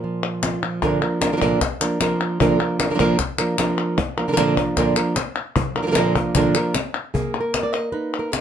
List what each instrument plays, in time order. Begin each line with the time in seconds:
Already playing: nylon-string guitar A#2 A#4
0.04 nylon-string guitar F3
0.43 nylon-string guitar F4, cajon slap, clap
0.63 nylon-string guitar F3
0.82 nylon-string guitar A#2 D3 F3 A#3 D4 A#4, cajon bass, cajon slap
1.02 nylon-string guitar F3 A#3 D4 A#4
1.21 nylon-string guitar F3 A#3 D4 A#4, cajon slap, clap
1.32 nylon-string guitar D3 F3 A#3 D4 A#4
1.37 nylon-string guitar D3 F3 A#3 D4 A#4
1.41 nylon-string guitar A#2 D3 F3 A#3 D4 A#4, cajon bass
1.61 muted nylon-string guitar stroke, cajon bass, cajon slap, clap
1.81 nylon-string guitar F3 A#3 D4 A#4, clap
2.00 nylon-string guitar F3 A#3 D4 A#4, cajon slap, clap
2.21 cajon slap
2.40 nylon-string guitar A#2 D3 F3 A#3 D4 A#4, cajon bass
2.59 nylon-string guitar F3 A#3 D4 A#4
2.79 nylon-string guitar F3 A#3 D4 A#4, cajon slap, clap
2.90 nylon-string guitar D3 F3 A#3 D4 A#4
2.94 nylon-string guitar D3 F3 A#3 D4 A#4
2.99 nylon-string guitar A#2 D3 F3 A#3 D4 A#4, cajon bass
3.19 muted nylon-string guitar stroke, cajon bass, cajon slap, clap
3.38 nylon-string guitar F3 A#3 D4 A#4, clap
3.58 nylon-string guitar F3 A#3 D4 A#4, cajon slap, clap
3.98 muted nylon-string guitar stroke, cajon bass, cajon slap
4.17 nylon-string guitar F3 A#3 D4 A#4
4.28 nylon-string guitar D3 F3 A#3 D4 A#4
4.32 nylon-string guitar D3 F3 A#3 D4 A#4
4.37 nylon-string guitar A#2 D3 F3 A#3 D4 A#4, cajon slap, clap
4.57 nylon-string guitar F3 A#3 D4 A#4, cajon bass
4.76 nylon-string guitar A#2 D3 F3 A#3 D4 A#4, cajon bass, cajon slap, clap
4.96 nylon-string guitar F3 A#3 D4 A#4, clap
5.16 muted nylon-string guitar stroke, cajon slap, clap
5.56 muted nylon-string guitar stroke, cajon bass
5.76 nylon-string guitar F3 A#3 D4 A#4
5.82 nylon-string guitar D3 F3 A#3 D4 A#4
5.87 nylon-string guitar D3 F3 A#3 D4 A#4
5.91 nylon-string guitar D3 F3 A#3 D4 A#4, clap
5.96 nylon-string guitar A#2 D3 F3 A#3 D4 A#4, cajon slap
6.16 nylon-string guitar F3 A#3 D4 A#4, cajon bass
6.35 nylon-string guitar A#2 D3 F3 A#3 D4 A#4, cajon bass, clap
6.55 nylon-string guitar F3 A#3 D4 A#4, clap
6.75 muted nylon-string guitar stroke, cajon slap, clap
7.14 nylon-string guitar A#3 G#4, cajon bass
7.40 nylon-string guitar A#4
7.53 nylon-string guitar B4, cajon slap, clap
7.63 nylon-string guitar D5
7.73 nylon-string guitar D#5, clap
7.92 nylon-string guitar D#4 B4
8.19 nylon-string guitar A#4
8.32 nylon-string guitar D#4 G#4, cajon slap, clap